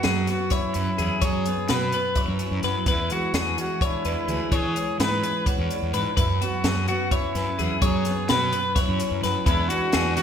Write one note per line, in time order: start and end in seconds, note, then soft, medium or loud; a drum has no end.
0.00 1.20 F#2 medium
0.00 0.28 B3 medium
0.00 0.30 F#4 medium
0.00 snare loud
0.00 closed hi-hat medium
0.04 0.26 F#2 medium
0.04 0.98 F#3 medium
0.04 0.28 G#4 medium
0.27 1.47 B3 soft
0.27 0.52 F#4 medium
0.27 0.54 F#4 medium
0.27 snare soft
0.27 closed hi-hat medium
0.50 0.74 C#4 medium
0.50 1.26 E4 medium
0.50 0.75 C#5 medium
0.50 kick medium
0.50 snare soft
0.50 closed hi-hat medium
0.74 0.86 F#2 medium
0.74 1.20 C#4 medium
0.74 0.99 B4 medium
0.74 closed hi-hat medium
0.98 1.10 E2 medium
0.98 1.69 F#3 medium
0.98 1.22 G#4 medium
0.98 closed hi-hat medium
1.22 2.84 F#2 medium
1.22 1.44 F#3 medium
1.22 1.72 G#4 medium
1.22 1.69 C#5 medium
1.22 kick medium
1.22 closed hi-hat medium
1.46 1.93 B3 medium
1.46 closed hi-hat medium
1.68 1.91 B2 medium
1.68 2.63 F#3 medium
1.68 1.93 B4 medium
1.68 2.23 B4 medium
1.68 snare loud
1.68 closed hi-hat medium
1.92 3.11 B3 soft
1.92 2.17 B4 medium
1.92 closed hi-hat medium
2.15 5.47 E4 medium
2.15 2.64 C#5 medium
2.15 kick medium
2.15 closed hi-hat medium
2.28 2.39 F#2 medium
2.39 2.84 C#4 medium
2.39 closed hi-hat medium
2.51 2.62 F#2 medium
2.63 2.75 F#2 medium
2.63 2.89 F#3 medium
2.63 2.87 B4 medium
2.63 snare soft
2.63 closed hi-hat medium
2.86 4.49 E2 medium
2.86 3.09 E2 medium
2.86 3.11 B4 medium
2.86 kick loud
2.86 closed hi-hat medium
2.91 3.14 E4 medium
3.10 3.58 G#3 medium
3.10 3.59 F#4 medium
3.10 3.34 F#4 medium
3.10 closed hi-hat medium
3.34 3.56 E2 medium
3.34 4.27 E3 medium
3.34 3.59 G#4 medium
3.34 snare loud
3.34 closed hi-hat medium
3.58 4.75 G#3 medium
3.58 3.82 F#4 medium
3.58 3.86 F#4 medium
3.58 closed hi-hat medium
3.81 4.05 D4 medium
3.81 4.53 E4 medium
3.81 4.06 C#5 medium
3.81 kick loud
3.81 closed hi-hat medium
4.05 4.16 E2 medium
4.05 4.50 D4 medium
4.05 4.29 B4 medium
4.05 closed hi-hat medium
4.27 4.39 D2 medium
4.27 4.98 E3 medium
4.27 4.53 G#4 medium
4.27 closed hi-hat medium
4.52 6.15 E2 medium
4.52 4.74 E3 medium
4.52 4.97 G#4 medium
4.52 5.00 C#5 medium
4.52 kick loud
4.52 closed hi-hat medium
4.76 5.24 G#3 medium
4.76 closed hi-hat medium
4.98 5.21 G#2 medium
4.98 5.94 E3 medium
4.98 5.49 B4 medium
4.98 5.22 B4 medium
4.98 snare loud
4.98 closed hi-hat medium
5.24 6.20 G#3 medium
5.24 5.46 B4 medium
5.24 closed hi-hat medium
5.46 8.77 F#4 medium
5.46 5.94 C#5 medium
5.46 kick medium
5.46 closed hi-hat medium
5.58 5.69 E2 medium
5.70 6.15 D4 medium
5.70 closed hi-hat medium
5.82 5.93 E2 medium
5.94 6.05 G#2 medium
5.94 6.20 E3 medium
5.94 6.16 B4 medium
5.94 closed hi-hat medium
6.17 7.79 F#2 medium
6.17 6.39 F#2 medium
6.17 6.28 E4 medium
6.17 6.41 B4 medium
6.17 kick loud
6.17 closed hi-hat medium
6.41 6.90 B3 medium
6.41 6.65 F#4 medium
6.41 6.85 F#4 medium
6.41 closed hi-hat medium
6.64 6.86 F#2 medium
6.64 7.59 F#3 medium
6.64 6.88 G#4 medium
6.64 snare loud
6.64 closed hi-hat medium
6.88 8.08 B3 medium
6.88 7.12 F#4 medium
6.88 7.14 F#4 medium
6.88 closed hi-hat medium
7.11 7.36 C#4 medium
7.11 7.84 E4 medium
7.11 7.36 C#5 medium
7.11 kick loud
7.11 closed hi-hat medium
7.35 7.46 F#2 medium
7.35 7.81 C#4 medium
7.35 7.59 B4 medium
7.35 snare soft
7.35 closed hi-hat medium
7.59 7.70 E2 medium
7.59 8.30 F#3 medium
7.59 7.82 G#4 medium
7.59 closed hi-hat medium
7.82 9.45 F#2 medium
7.82 8.04 F#3 medium
7.82 8.30 G#4 medium
7.82 8.29 C#5 medium
7.82 kick loud
7.82 closed hi-hat medium
8.05 8.52 B3 medium
8.05 snare soft
8.05 closed hi-hat medium
8.29 8.51 B2 medium
8.29 9.23 F#3 medium
8.29 8.51 B4 medium
8.29 8.80 B4 medium
8.29 snare loud
8.29 closed hi-hat medium
8.53 9.47 B3 medium
8.53 8.75 B4 medium
8.53 closed hi-hat medium
8.75 10.22 E4 medium
8.75 9.23 C#5 medium
8.75 kick loud
8.75 snare soft
8.75 closed hi-hat medium
8.88 8.99 F#2 medium
9.00 9.45 C#4 medium
9.00 closed hi-hat medium
9.11 9.22 F#2 medium
9.23 9.35 F#2 medium
9.23 9.47 F#3 medium
9.23 9.45 B4 medium
9.23 snare soft
9.23 closed hi-hat medium
9.46 10.22 E2 medium
9.46 9.68 E2 loud
9.46 9.92 E3 medium
9.46 9.70 G#3 medium
9.46 10.22 D4 medium
9.46 9.70 E4 medium
9.46 9.70 B4 medium
9.46 kick loud
9.46 closed hi-hat medium
9.69 10.17 G#3 medium
9.69 10.15 F#4 loud
9.69 9.93 F#4 medium
9.69 closed hi-hat medium
9.93 10.16 E2 medium
9.93 10.22 E3 medium
9.93 10.17 G#4 medium
9.93 snare loud
9.93 closed hi-hat medium
10.16 10.22 G#3 medium
10.16 10.22 F#4 loud
10.16 10.22 F#4 medium
10.16 snare soft
10.16 closed hi-hat medium